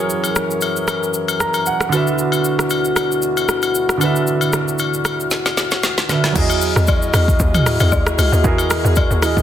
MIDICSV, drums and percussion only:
0, 0, Header, 1, 2, 480
1, 0, Start_track
1, 0, Tempo, 521739
1, 88, Time_signature, 4, 2, 24, 8
1, 8667, End_track
2, 0, Start_track
2, 0, Title_t, "Drums"
2, 90, Note_on_c, 9, 82, 58
2, 182, Note_off_c, 9, 82, 0
2, 217, Note_on_c, 9, 67, 61
2, 224, Note_on_c, 9, 82, 52
2, 309, Note_off_c, 9, 67, 0
2, 316, Note_off_c, 9, 82, 0
2, 329, Note_on_c, 9, 82, 74
2, 332, Note_on_c, 9, 37, 93
2, 421, Note_off_c, 9, 82, 0
2, 424, Note_off_c, 9, 37, 0
2, 467, Note_on_c, 9, 82, 51
2, 559, Note_off_c, 9, 82, 0
2, 564, Note_on_c, 9, 82, 71
2, 573, Note_on_c, 9, 67, 64
2, 656, Note_off_c, 9, 82, 0
2, 665, Note_off_c, 9, 67, 0
2, 703, Note_on_c, 9, 82, 42
2, 795, Note_off_c, 9, 82, 0
2, 807, Note_on_c, 9, 37, 88
2, 808, Note_on_c, 9, 67, 65
2, 808, Note_on_c, 9, 82, 80
2, 899, Note_off_c, 9, 37, 0
2, 900, Note_off_c, 9, 67, 0
2, 900, Note_off_c, 9, 82, 0
2, 950, Note_on_c, 9, 82, 47
2, 1042, Note_off_c, 9, 82, 0
2, 1046, Note_on_c, 9, 82, 71
2, 1138, Note_off_c, 9, 82, 0
2, 1181, Note_on_c, 9, 67, 67
2, 1184, Note_on_c, 9, 82, 45
2, 1273, Note_off_c, 9, 67, 0
2, 1276, Note_off_c, 9, 82, 0
2, 1291, Note_on_c, 9, 37, 92
2, 1292, Note_on_c, 9, 82, 80
2, 1383, Note_off_c, 9, 37, 0
2, 1384, Note_off_c, 9, 82, 0
2, 1415, Note_on_c, 9, 82, 49
2, 1417, Note_on_c, 9, 67, 68
2, 1507, Note_off_c, 9, 82, 0
2, 1509, Note_off_c, 9, 67, 0
2, 1529, Note_on_c, 9, 82, 80
2, 1621, Note_off_c, 9, 82, 0
2, 1661, Note_on_c, 9, 37, 91
2, 1664, Note_on_c, 9, 82, 52
2, 1753, Note_off_c, 9, 37, 0
2, 1756, Note_off_c, 9, 82, 0
2, 1771, Note_on_c, 9, 67, 69
2, 1773, Note_on_c, 9, 82, 85
2, 1863, Note_off_c, 9, 67, 0
2, 1865, Note_off_c, 9, 82, 0
2, 1907, Note_on_c, 9, 82, 47
2, 1999, Note_off_c, 9, 82, 0
2, 2010, Note_on_c, 9, 82, 60
2, 2102, Note_off_c, 9, 82, 0
2, 2135, Note_on_c, 9, 67, 66
2, 2145, Note_on_c, 9, 82, 56
2, 2227, Note_off_c, 9, 67, 0
2, 2237, Note_off_c, 9, 82, 0
2, 2250, Note_on_c, 9, 82, 74
2, 2342, Note_off_c, 9, 82, 0
2, 2383, Note_on_c, 9, 37, 85
2, 2388, Note_on_c, 9, 82, 54
2, 2475, Note_off_c, 9, 37, 0
2, 2480, Note_off_c, 9, 82, 0
2, 2483, Note_on_c, 9, 82, 71
2, 2490, Note_on_c, 9, 67, 61
2, 2575, Note_off_c, 9, 82, 0
2, 2582, Note_off_c, 9, 67, 0
2, 2620, Note_on_c, 9, 82, 44
2, 2712, Note_off_c, 9, 82, 0
2, 2725, Note_on_c, 9, 37, 91
2, 2725, Note_on_c, 9, 67, 66
2, 2727, Note_on_c, 9, 82, 76
2, 2817, Note_off_c, 9, 37, 0
2, 2817, Note_off_c, 9, 67, 0
2, 2819, Note_off_c, 9, 82, 0
2, 2868, Note_on_c, 9, 82, 48
2, 2960, Note_off_c, 9, 82, 0
2, 2965, Note_on_c, 9, 82, 66
2, 3057, Note_off_c, 9, 82, 0
2, 3101, Note_on_c, 9, 67, 68
2, 3102, Note_on_c, 9, 82, 46
2, 3193, Note_off_c, 9, 67, 0
2, 3194, Note_off_c, 9, 82, 0
2, 3208, Note_on_c, 9, 37, 91
2, 3209, Note_on_c, 9, 82, 82
2, 3300, Note_off_c, 9, 37, 0
2, 3301, Note_off_c, 9, 82, 0
2, 3333, Note_on_c, 9, 82, 50
2, 3337, Note_on_c, 9, 67, 68
2, 3425, Note_off_c, 9, 82, 0
2, 3429, Note_off_c, 9, 67, 0
2, 3449, Note_on_c, 9, 82, 81
2, 3541, Note_off_c, 9, 82, 0
2, 3580, Note_on_c, 9, 37, 91
2, 3583, Note_on_c, 9, 82, 51
2, 3672, Note_off_c, 9, 37, 0
2, 3675, Note_off_c, 9, 82, 0
2, 3690, Note_on_c, 9, 67, 75
2, 3691, Note_on_c, 9, 82, 84
2, 3782, Note_off_c, 9, 67, 0
2, 3783, Note_off_c, 9, 82, 0
2, 3825, Note_on_c, 9, 82, 45
2, 3917, Note_off_c, 9, 82, 0
2, 3929, Note_on_c, 9, 82, 60
2, 4021, Note_off_c, 9, 82, 0
2, 4057, Note_on_c, 9, 67, 64
2, 4064, Note_on_c, 9, 82, 54
2, 4149, Note_off_c, 9, 67, 0
2, 4156, Note_off_c, 9, 82, 0
2, 4167, Note_on_c, 9, 82, 76
2, 4170, Note_on_c, 9, 37, 91
2, 4259, Note_off_c, 9, 82, 0
2, 4262, Note_off_c, 9, 37, 0
2, 4307, Note_on_c, 9, 82, 52
2, 4399, Note_off_c, 9, 82, 0
2, 4403, Note_on_c, 9, 82, 71
2, 4412, Note_on_c, 9, 67, 62
2, 4495, Note_off_c, 9, 82, 0
2, 4504, Note_off_c, 9, 67, 0
2, 4543, Note_on_c, 9, 82, 45
2, 4635, Note_off_c, 9, 82, 0
2, 4645, Note_on_c, 9, 37, 93
2, 4646, Note_on_c, 9, 67, 68
2, 4647, Note_on_c, 9, 82, 79
2, 4737, Note_off_c, 9, 37, 0
2, 4738, Note_off_c, 9, 67, 0
2, 4739, Note_off_c, 9, 82, 0
2, 4786, Note_on_c, 9, 82, 48
2, 4878, Note_off_c, 9, 82, 0
2, 4884, Note_on_c, 9, 82, 69
2, 4888, Note_on_c, 9, 38, 55
2, 4976, Note_off_c, 9, 82, 0
2, 4980, Note_off_c, 9, 38, 0
2, 5021, Note_on_c, 9, 67, 69
2, 5022, Note_on_c, 9, 38, 51
2, 5023, Note_on_c, 9, 82, 45
2, 5113, Note_off_c, 9, 67, 0
2, 5114, Note_off_c, 9, 38, 0
2, 5115, Note_off_c, 9, 82, 0
2, 5128, Note_on_c, 9, 38, 65
2, 5129, Note_on_c, 9, 82, 76
2, 5220, Note_off_c, 9, 38, 0
2, 5221, Note_off_c, 9, 82, 0
2, 5254, Note_on_c, 9, 82, 52
2, 5257, Note_on_c, 9, 67, 66
2, 5261, Note_on_c, 9, 38, 58
2, 5346, Note_off_c, 9, 82, 0
2, 5349, Note_off_c, 9, 67, 0
2, 5353, Note_off_c, 9, 38, 0
2, 5367, Note_on_c, 9, 38, 74
2, 5367, Note_on_c, 9, 82, 84
2, 5459, Note_off_c, 9, 38, 0
2, 5459, Note_off_c, 9, 82, 0
2, 5500, Note_on_c, 9, 38, 70
2, 5502, Note_on_c, 9, 82, 54
2, 5592, Note_off_c, 9, 38, 0
2, 5594, Note_off_c, 9, 82, 0
2, 5606, Note_on_c, 9, 38, 90
2, 5610, Note_on_c, 9, 82, 84
2, 5612, Note_on_c, 9, 67, 68
2, 5698, Note_off_c, 9, 38, 0
2, 5702, Note_off_c, 9, 82, 0
2, 5704, Note_off_c, 9, 67, 0
2, 5739, Note_on_c, 9, 38, 80
2, 5744, Note_on_c, 9, 82, 48
2, 5831, Note_off_c, 9, 38, 0
2, 5836, Note_off_c, 9, 82, 0
2, 5847, Note_on_c, 9, 36, 116
2, 5847, Note_on_c, 9, 49, 101
2, 5847, Note_on_c, 9, 82, 69
2, 5939, Note_off_c, 9, 36, 0
2, 5939, Note_off_c, 9, 49, 0
2, 5939, Note_off_c, 9, 82, 0
2, 5977, Note_on_c, 9, 67, 69
2, 5983, Note_on_c, 9, 82, 60
2, 6069, Note_off_c, 9, 67, 0
2, 6075, Note_off_c, 9, 82, 0
2, 6086, Note_on_c, 9, 46, 48
2, 6086, Note_on_c, 9, 82, 82
2, 6178, Note_off_c, 9, 46, 0
2, 6178, Note_off_c, 9, 82, 0
2, 6221, Note_on_c, 9, 37, 94
2, 6226, Note_on_c, 9, 82, 58
2, 6313, Note_off_c, 9, 37, 0
2, 6318, Note_off_c, 9, 82, 0
2, 6323, Note_on_c, 9, 82, 72
2, 6330, Note_on_c, 9, 36, 108
2, 6333, Note_on_c, 9, 67, 68
2, 6333, Note_on_c, 9, 77, 68
2, 6415, Note_off_c, 9, 82, 0
2, 6422, Note_off_c, 9, 36, 0
2, 6425, Note_off_c, 9, 67, 0
2, 6425, Note_off_c, 9, 77, 0
2, 6460, Note_on_c, 9, 82, 48
2, 6552, Note_off_c, 9, 82, 0
2, 6565, Note_on_c, 9, 37, 102
2, 6566, Note_on_c, 9, 46, 51
2, 6566, Note_on_c, 9, 82, 86
2, 6567, Note_on_c, 9, 67, 70
2, 6657, Note_off_c, 9, 37, 0
2, 6658, Note_off_c, 9, 46, 0
2, 6658, Note_off_c, 9, 82, 0
2, 6659, Note_off_c, 9, 67, 0
2, 6699, Note_on_c, 9, 36, 114
2, 6706, Note_on_c, 9, 82, 50
2, 6791, Note_off_c, 9, 36, 0
2, 6798, Note_off_c, 9, 82, 0
2, 6804, Note_on_c, 9, 82, 74
2, 6806, Note_on_c, 9, 36, 118
2, 6896, Note_off_c, 9, 82, 0
2, 6898, Note_off_c, 9, 36, 0
2, 6940, Note_on_c, 9, 45, 97
2, 6941, Note_on_c, 9, 82, 50
2, 6942, Note_on_c, 9, 67, 74
2, 7032, Note_off_c, 9, 45, 0
2, 7033, Note_off_c, 9, 82, 0
2, 7034, Note_off_c, 9, 67, 0
2, 7050, Note_on_c, 9, 37, 96
2, 7051, Note_on_c, 9, 46, 50
2, 7051, Note_on_c, 9, 82, 87
2, 7142, Note_off_c, 9, 37, 0
2, 7143, Note_off_c, 9, 46, 0
2, 7143, Note_off_c, 9, 82, 0
2, 7174, Note_on_c, 9, 82, 53
2, 7179, Note_on_c, 9, 67, 75
2, 7266, Note_off_c, 9, 82, 0
2, 7271, Note_off_c, 9, 67, 0
2, 7287, Note_on_c, 9, 77, 85
2, 7288, Note_on_c, 9, 82, 88
2, 7289, Note_on_c, 9, 36, 91
2, 7379, Note_off_c, 9, 77, 0
2, 7380, Note_off_c, 9, 82, 0
2, 7381, Note_off_c, 9, 36, 0
2, 7420, Note_on_c, 9, 37, 99
2, 7423, Note_on_c, 9, 82, 55
2, 7512, Note_off_c, 9, 37, 0
2, 7515, Note_off_c, 9, 82, 0
2, 7531, Note_on_c, 9, 46, 53
2, 7531, Note_on_c, 9, 82, 90
2, 7532, Note_on_c, 9, 67, 78
2, 7623, Note_off_c, 9, 46, 0
2, 7623, Note_off_c, 9, 82, 0
2, 7624, Note_off_c, 9, 67, 0
2, 7665, Note_on_c, 9, 82, 54
2, 7757, Note_off_c, 9, 82, 0
2, 7767, Note_on_c, 9, 36, 119
2, 7768, Note_on_c, 9, 82, 65
2, 7859, Note_off_c, 9, 36, 0
2, 7860, Note_off_c, 9, 82, 0
2, 7897, Note_on_c, 9, 67, 69
2, 7904, Note_on_c, 9, 82, 60
2, 7989, Note_off_c, 9, 67, 0
2, 7996, Note_off_c, 9, 82, 0
2, 8007, Note_on_c, 9, 46, 47
2, 8007, Note_on_c, 9, 82, 79
2, 8010, Note_on_c, 9, 37, 101
2, 8099, Note_off_c, 9, 46, 0
2, 8099, Note_off_c, 9, 82, 0
2, 8102, Note_off_c, 9, 37, 0
2, 8146, Note_on_c, 9, 82, 58
2, 8238, Note_off_c, 9, 82, 0
2, 8242, Note_on_c, 9, 82, 75
2, 8249, Note_on_c, 9, 36, 109
2, 8252, Note_on_c, 9, 67, 69
2, 8252, Note_on_c, 9, 77, 70
2, 8334, Note_off_c, 9, 82, 0
2, 8341, Note_off_c, 9, 36, 0
2, 8344, Note_off_c, 9, 67, 0
2, 8344, Note_off_c, 9, 77, 0
2, 8381, Note_on_c, 9, 82, 47
2, 8473, Note_off_c, 9, 82, 0
2, 8486, Note_on_c, 9, 37, 100
2, 8486, Note_on_c, 9, 67, 75
2, 8488, Note_on_c, 9, 46, 52
2, 8488, Note_on_c, 9, 82, 85
2, 8578, Note_off_c, 9, 37, 0
2, 8578, Note_off_c, 9, 67, 0
2, 8580, Note_off_c, 9, 46, 0
2, 8580, Note_off_c, 9, 82, 0
2, 8619, Note_on_c, 9, 36, 107
2, 8627, Note_on_c, 9, 82, 51
2, 8667, Note_off_c, 9, 36, 0
2, 8667, Note_off_c, 9, 82, 0
2, 8667, End_track
0, 0, End_of_file